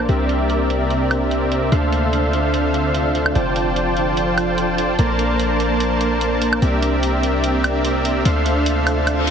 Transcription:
0.08 C2 C3 A#3 C4 D4 G4 A#4 D5 E5, closed hi-hat
0.29 closed hi-hat
0.50 closed hi-hat
0.70 closed hi-hat
0.90 closed hi-hat
1.11 closed hi-hat, high woodblock
1.31 closed hi-hat
1.52 closed hi-hat
1.72 D2 D3 C4 D4 F4 A4 C5 E5 F5, closed hi-hat
1.93 closed hi-hat
2.13 closed hi-hat
2.33 closed hi-hat
2.54 closed hi-hat
2.74 closed hi-hat
2.95 closed hi-hat
3.15 closed hi-hat
3.26 high woodblock
3.35 F1 F3 D4 F4 A4 C5 D5 G5 A5, closed hi-hat
3.56 closed hi-hat
3.76 closed hi-hat
3.97 closed hi-hat
4.17 closed hi-hat
4.38 closed hi-hat, high woodblock
4.58 closed hi-hat
4.78 closed hi-hat
4.99 A#1 A#3 A#4 C5 D5 A5, closed hi-hat
5.19 closed hi-hat
5.39 closed hi-hat
5.60 closed hi-hat
5.80 closed hi-hat
6.01 closed hi-hat
6.21 closed hi-hat
6.42 closed hi-hat
6.53 high woodblock
6.62 C2 C3 A#3 C4 G4 A#4 D5 E5, closed hi-hat
6.83 closed hi-hat
7.03 closed hi-hat
7.23 closed hi-hat
7.44 closed hi-hat
7.64 closed hi-hat, high woodblock
7.85 closed hi-hat
8.05 closed hi-hat
8.25 D2 D3 C4 D4 F4 A4 C5 E5 F5, closed hi-hat
8.46 closed hi-hat
8.66 closed hi-hat
8.87 closed hi-hat, high woodblock
9.07 closed hi-hat, reverse cymbal, high woodblock
9.27 closed hi-hat

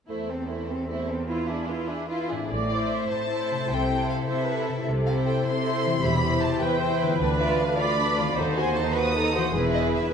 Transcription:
0.09 E2 A3 E4 C5
0.30 C4 A4
0.49 A3 E4 C5
0.69 C4 A4
0.89 A3 E4 C5
1.08 C4 A4
1.28 E4 F4 B4
1.48 D4 E4 G#4
1.68 E4 F4 B4
1.87 D4 E4 G#4
2.08 E4 F4 B4
2.28 A2 D4 E4 G#4
2.36 C4
2.40 E4
2.45 A4
2.49 A1 A2 D5
2.68 E4 C5 D5
2.91 E5
3.09 A2 C5 A5
3.29 E4 C5
3.51 C3
3.55 C4
3.60 E4
3.64 A4
3.69 C2 C3 E4 A4 G5
3.89 E4 A4
4.09 F5
4.27 C3 C5 E5
4.47 E4 A4 B4
4.67 C3 A4
4.73 C4
4.78 E4
4.82 C3 G4
4.87 C2
5.06 E4 C5 F5
5.26 G5
5.45 C3 C6
5.64 E4 C5
5.85 E3
5.90 C4
5.94 E4
5.99 E4 G4 C5
6.03 E1 E2 G4 B5
6.22 E4 C5
6.42 A5
6.61 E2 B4 G5
6.80 E4 C5
7.00 D3 B4
7.06 B3
7.11 F4
7.20 D2 D4 B4
7.39 F4 D5 E5
7.59 D4 B4 F5
7.78 F4 D5 B5
7.98 D4 B4
8.18 D#3 F4 D5
8.23 C4
8.28 F#4
8.32 A4
8.36 D#2 D#4 A4 C5
8.56 F#4 C5 G#5
8.75 D#4 A4 A5
8.96 F#4 B4 C5 D#6
9.15 D#4 A4
9.35 E3 F#4 C5
9.42 B3
9.46 E4
9.51 G#4
9.55 E1 E2 E4 G#4 B4
9.75 D#5
9.94 E3 E5
10.02 D4
10.06 F4

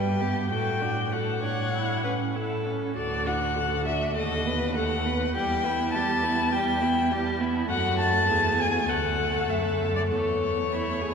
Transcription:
Already playing: G2 G3 B4 G5
0.21 B3 G4
0.50 A2 F#4 A4 G5
0.82 D4 F#4
1.12 F#4 A4 F#5
1.43 D4 C#5
1.73 E4
2.04 C#4 B4
2.35 E4 A4
2.65 C#4
2.96 D2 F#4 A4 D5
3.26 D4 F#4 F#5
3.55 F#4 A4
3.85 D4 F#4 E5
4.15 D#2 A3 A4 D#5
4.45 B3 B4
4.75 A3 A4 F#5
5.05 B3 B4
5.34 E2 G3 G4 G5
5.64 B3 E4
5.94 G3 G4 A5
6.23 B3 E4
6.52 G3 G4 G5
6.81 B3 E4
7.11 G3 G4
7.40 B3 E4
7.69 F#2 A3 F#4 F#5
7.99 A5
8.30 E2 G#4
8.60 G#5
8.89 D2 A3 A4 F#5
9.49 F#2 E5
9.96 D5
10.10 E2 A3 A4 C#5
10.72 E4
11.01 G#4

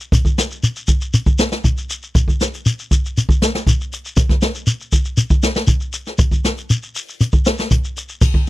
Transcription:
0.00 shekere
0.12 kick, closed hi-hat, shekere
0.25 kick, shekere
0.38 snare, closed hi-hat, shekere
0.51 shekere
0.63 closed hi-hat, shekere
0.76 shekere
0.87 kick, closed hi-hat, shekere
1.01 shekere
1.14 closed hi-hat, shekere
1.26 kick, shekere
1.39 snare, closed hi-hat, shekere
1.52 snare, shekere
1.64 kick, closed hi-hat, shekere
1.78 shekere
1.90 closed hi-hat, shekere
2.03 shekere
2.15 kick, closed hi-hat, shekere
2.28 kick, shekere
2.41 snare, closed hi-hat, shekere
2.54 closed hi-hat, shekere
2.66 closed hi-hat, shekere
2.79 shekere
2.91 kick, closed hi-hat, shekere
3.06 shekere
3.17 closed hi-hat, shekere
3.29 kick, shekere
3.42 snare, closed hi-hat, shekere
3.55 snare, shekere
3.67 kick, closed hi-hat, shekere
3.81 shekere
3.92 closed hi-hat, shekere
4.05 shekere
4.17 kick, snare, closed hi-hat, shekere
4.29 kick, snare, shekere
4.42 snare, closed hi-hat, shekere
4.55 shekere
4.67 closed hi-hat, shekere
4.81 shekere
4.92 kick, closed hi-hat, shekere
5.05 shekere
5.17 closed hi-hat, shekere
5.30 kick, shekere
5.43 snare, closed hi-hat, shekere
5.55 snare, shekere
5.67 kick, closed hi-hat, shekere
5.80 shekere
5.93 closed hi-hat, shekere
6.06 snare, shekere
6.18 kick, closed hi-hat, shekere
6.31 kick, shekere
6.44 snare, closed hi-hat, shekere
6.57 closed hi-hat, shekere
6.70 closed hi-hat, shekere
6.83 shekere
6.95 open hi-hat, shekere
7.09 shekere
7.21 closed hi-hat, shekere
7.32 kick, shekere
7.45 snare, closed hi-hat, shekere
7.58 snare, shekere
7.71 kick, closed hi-hat, shekere
7.84 shekere
7.96 closed hi-hat, shekere
8.09 shekere
8.21 kick, crash, shekere
8.34 kick

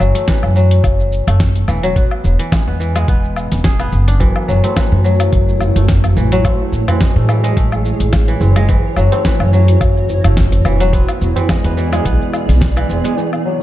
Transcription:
Already playing: E3
0.00 F#1 F#3, cabasa, low woodblock
0.15 A3, closed hi-hat, cabasa
0.28 E3, kick, snare, closed hi-hat, cabasa
0.43 F#2, low woodblock
0.56 F#3, cabasa
0.71 closed hi-hat, cabasa
0.84 F#1, kick, closed hi-hat, cabasa, low woodblock
1.00 cabasa
1.12 cabasa
1.27 F#1 A3, closed hi-hat, cabasa, low woodblock
1.40 kick, snare, closed hi-hat, cabasa
1.55 closed hi-hat
1.68 E1 E3, cabasa, low woodblock
1.83 F#3, closed hi-hat, cabasa
1.96 B3, kick, closed hi-hat, cabasa
2.11 low woodblock
2.24 E1, cabasa
2.39 E3, closed hi-hat, cabasa
2.52 G#3, kick, snare, closed hi-hat, cabasa, low woodblock
2.67 E2 B3
2.80 E3, cabasa
2.95 G#3, closed hi-hat, cabasa, low woodblock
3.08 E1 B3, kick, closed hi-hat, cabasa
3.24 cabasa
3.36 cabasa, low woodblock
3.52 E1, snare, closed hi-hat, cabasa
3.64 G#4, kick, snare, closed hi-hat, cabasa
3.80 B3, closed hi-hat, low woodblock
3.92 F#1, cabasa
4.08 D4, closed hi-hat, cabasa
4.20 E3 F#3 A3 E4 F#4 C#5, kick, closed hi-hat, tabla na, cabasa
4.36 low woodblock
4.48 F#1 F#3, cabasa
4.64 A3, closed hi-hat, tabla na, cabasa
4.76 E3, kick, snare, closed hi-hat, cabasa, low woodblock
4.92 F#2, tabla tin
5.04 F#3, cabasa
5.20 closed hi-hat, tabla tin, cabasa, low woodblock
5.33 F#1, kick, closed hi-hat, cabasa
5.49 cabasa
5.60 tabla na, tabla tin, tabla ge, cabasa, low woodblock
5.76 F#1 A3, closed hi-hat, cabasa
5.89 kick, snare, closed hi-hat, cabasa
6.04 closed hi-hat, tabla tin, tabla ge, low woodblock
6.16 A1 E3, tabla tin, cabasa
6.32 F#3, closed hi-hat, cabasa
6.44 A3 E4 G#4, kick, closed hi-hat, tabla na, cabasa, low woodblock
6.72 A1, cabasa
6.88 E3, closed hi-hat, tabla na, tabla ge, cabasa, low woodblock
7.01 G#3, kick, snare, closed hi-hat, cabasa
7.16 A2 A3, tabla tin
7.29 E3, cabasa, low woodblock
7.44 G#3, closed hi-hat, tabla tin, cabasa
7.57 A1 A3, kick, closed hi-hat, cabasa
7.72 cabasa, low woodblock
7.85 cabasa
8.00 A1, closed hi-hat, cabasa
8.13 kick, snare, closed hi-hat, cabasa, low woodblock
8.28 E3, closed hi-hat
8.41 F#1, tabla na, cabasa
8.56 G#3, closed hi-hat, cabasa, low woodblock
8.69 E3 F#4, kick, closed hi-hat, tabla na, cabasa
8.96 F#1 F#3, cabasa, low woodblock
9.12 A3, closed hi-hat, tabla na, cabasa
9.25 E3, kick, snare, closed hi-hat, cabasa
9.40 F#2, tabla tin, low woodblock
9.53 F#3, cabasa
9.68 closed hi-hat, tabla tin, cabasa
9.81 F#1, kick, closed hi-hat, cabasa, low woodblock
9.97 cabasa
10.08 tabla na, tabla tin, tabla ge, cabasa
10.24 F#1 A3, closed hi-hat, cabasa, low woodblock
10.37 kick, snare, closed hi-hat, cabasa
10.52 closed hi-hat, tabla tin, tabla ge
10.65 E1 E3, tabla tin, cabasa, low woodblock
10.80 F#3, closed hi-hat, cabasa
10.93 B3 G#4 D5, kick, closed hi-hat, tabla na, cabasa
11.08 closed hi-hat, cabasa, low woodblock
11.21 E1, cabasa
11.36 E3, closed hi-hat, tabla na, tabla ge, cabasa
11.49 G#3, kick, snare, closed hi-hat, cabasa, low woodblock
11.64 E2 B3, closed hi-hat, tabla tin, cabasa
11.77 E3, cabasa
11.92 G#3, closed hi-hat, tabla tin, cabasa, low woodblock
12.05 B1 B3, kick, closed hi-hat, cabasa
12.21 cabasa
12.33 cabasa, low woodblock
12.49 B1, snare, closed hi-hat, cabasa
12.61 kick, snare, closed hi-hat, cabasa
12.76 E3, closed hi-hat, low woodblock
12.89 E1, tabla na, cabasa
13.04 G#3, closed hi-hat, cabasa
13.17 E3 E4 F#4 C#5, cabasa
13.33 cabasa, low woodblock
13.45 F#3

